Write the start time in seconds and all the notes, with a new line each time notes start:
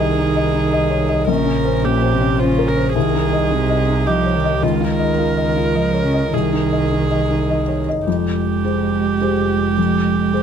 Already playing: C2 D#3 D#4 G#4
0.00 D#5
0.18 D#4
0.36 D#5
0.54 D#4
0.73 D#5
0.90 C#5
1.09 D#5
1.27 A#1 C#3 A#4
1.46 C#4
1.65 C5
1.83 A#2 C#4 G4
2.02 C5
2.13 C3
2.21 C#4
2.38 F4 C5
2.43 C#3
2.58 A#4
2.68 A#4
2.76 C5
2.95 C2 D#3 G#4
3.14 D#4
3.33 D#5
3.51 C3 D#4
3.70 D#5
3.89 D#4
4.06 F3 G4 D#5
4.26 C#5
4.35 D#3
4.45 D#5
4.63 C#2 D#3 F4
4.80 F4
4.91 A#4
4.99 D#5
5.18 F4
5.37 D#5
5.56 F4
5.75 F3 D#5
5.94 C#5
6.04 C#3
6.14 D#5
6.32 C2 D#3 G#4
6.53 D#4
6.72 D#5
6.92 D#4
7.11 D#5
7.30 D#4
7.50 D#5
7.68 C#5
7.89 D#5
8.07 F1 F2 G#3 G4
8.64 G4 G#4 C5
9.21 G4 G#4 C5
9.78 F2
10.33 G4 G#4 C5